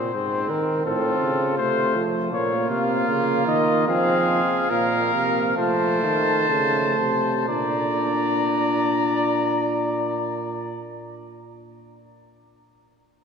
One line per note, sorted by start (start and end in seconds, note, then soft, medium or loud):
0.00 0.14 A#2 medium
0.00 0.12 C4 medium
0.00 0.52 C5 medium
0.14 0.51 G#2 medium
0.14 0.84 C4 medium
0.50 0.85 D#3 medium
0.50 0.85 A#4 medium
0.85 1.21 A2 medium
0.85 1.54 C4 medium
0.85 2.01 F4 medium
0.85 1.57 A4 medium
1.22 1.60 C#3 medium
1.57 1.97 C3 medium
1.57 2.31 A3 medium
1.57 2.05 C5 loud
1.95 2.32 F3 medium
2.31 2.70 A#2 medium
2.31 3.90 A#3 medium
2.31 3.84 F4 medium
2.31 2.68 C#5 medium
2.70 3.08 C3 medium
2.70 3.47 F5 medium
3.08 3.47 C#3 medium
3.47 3.87 D#3 medium
3.47 3.87 D#5 medium
3.87 4.40 F3 medium
3.87 4.70 C4 medium
3.87 4.71 G#4 medium
3.87 4.69 F5 medium
4.70 5.11 A#2 medium
4.70 5.59 A#3 medium
4.70 5.57 A#4 medium
4.70 5.56 F5 medium
5.14 5.57 C3 medium
5.57 6.02 F3 medium
5.57 6.48 A3 medium
5.57 7.44 C5 medium
5.57 7.44 A5 medium
6.03 6.48 D#3 medium
6.49 6.97 C#3 medium
6.49 7.46 A3 medium
6.98 7.47 C3 medium
7.48 10.80 A#2 medium
7.48 10.81 D4 medium
7.48 10.81 D5 medium
7.48 10.80 A#5 medium